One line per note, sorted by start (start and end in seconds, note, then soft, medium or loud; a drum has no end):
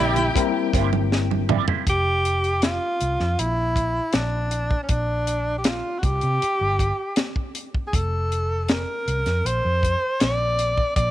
0.00 0.28 A#1 medium
0.00 0.15 G3 medium
0.00 0.13 A#3 medium
0.00 0.15 A#3 medium
0.00 0.15 C4 medium
0.00 0.14 E4 medium
0.00 0.15 E4 medium
0.00 1.12 E4 loud
0.00 0.14 G4 medium
0.00 1.45 G4 loud
0.00 0.16 A#4 medium
0.00 0.14 D5 medium
0.00 1.45 G5 loud
0.16 closed hi-hat medium
0.16 low conga medium
0.35 1.66 G3 medium
0.35 1.66 A#3 medium
0.35 1.67 C4 medium
0.35 1.67 E4 medium
0.35 1.67 A#4 medium
0.35 muted clean electric guitar stroke soft
0.35 kick medium
0.35 closed hi-hat loud
0.73 1.64 G1 medium
0.73 0.89 A#3 medium
0.73 0.89 E4 medium
0.73 0.89 G4 medium
0.73 0.89 C5 medium
0.73 kick medium
0.73 closed hi-hat medium
0.73 muted conga soft
0.93 high conga medium
1.12 muted clean electric guitar stroke soft
1.12 snare medium
1.31 muted clean electric guitar stroke soft
1.31 high conga medium
1.49 1.65 A#3 medium
1.49 1.65 E4 medium
1.49 1.65 G4 medium
1.49 1.65 D5 medium
1.49 mid tom medium
1.49 muted conga soft
1.49 high conga medium
1.49 low conga medium
1.68 1.84 A#3 soft
1.68 1.84 E4 medium
1.68 1.84 G4 soft
1.68 1.84 C5 medium
1.68 floor tom loud
1.87 2.78 F1 medium
1.87 2.60 G4 loud
1.87 kick medium
1.87 closed hi-hat medium
2.25 closed hi-hat medium
2.44 closed hi-hat soft
2.62 3.41 F4 medium
2.62 snare medium
2.62 closed hi-hat medium
3.01 3.16 C2 medium
3.01 closed hi-hat medium
3.20 3.35 F2 medium
3.20 snare soft
3.39 3.99 A#1 medium
3.39 4.16 E4 medium
3.39 closed hi-hat medium
3.76 kick medium
3.76 closed hi-hat medium
4.13 4.74 A#1 medium
4.13 4.82 D4 medium
4.13 snare medium
4.13 closed hi-hat medium
4.51 closed hi-hat medium
4.71 kick medium
4.83 4.91 C#4 medium
4.89 5.80 A#1 medium
4.89 5.57 D4 medium
4.89 kick loud
4.89 closed hi-hat medium
5.27 closed hi-hat medium
5.58 5.67 G4 medium
5.64 6.00 F4 medium
5.64 snare loud
5.64 closed hi-hat medium
5.98 6.06 F#4 medium
6.03 6.19 C2 medium
6.03 7.56 G4 loud
6.03 kick loud
6.03 closed hi-hat medium
6.21 6.38 C3 medium
6.21 closed hi-hat soft
6.42 muted fingered electric bass stroke soft
6.42 closed hi-hat medium
6.61 6.91 G1 medium
6.79 kick medium
6.79 closed hi-hat medium
7.16 snare medium
7.16 closed hi-hat medium
7.36 kick medium
7.55 closed hi-hat medium
7.74 kick medium
7.87 7.97 G#4 medium
7.93 8.84 F1 medium
7.93 8.64 A4 loud
7.93 kick loud
7.93 closed hi-hat medium
8.32 closed hi-hat medium
8.64 8.72 A4 medium
8.68 9.47 A#4 medium
8.68 snare loud
8.68 closed hi-hat medium
9.08 9.22 C2 medium
9.08 closed hi-hat medium
9.26 9.41 F2 medium
9.26 snare soft
9.26 closed hi-hat soft
9.45 9.60 A#1 medium
9.45 10.22 C5 medium
9.45 closed hi-hat medium
9.65 9.94 F2 medium
9.83 kick medium
9.83 closed hi-hat medium
10.20 10.81 A#1 medium
10.20 10.95 D5 loud
10.20 snare medium
10.20 closed hi-hat medium
10.59 closed hi-hat medium
10.78 kick medium
10.96 11.11 A#1 loud
10.96 11.11 D5 loud
10.96 kick loud
10.96 closed hi-hat medium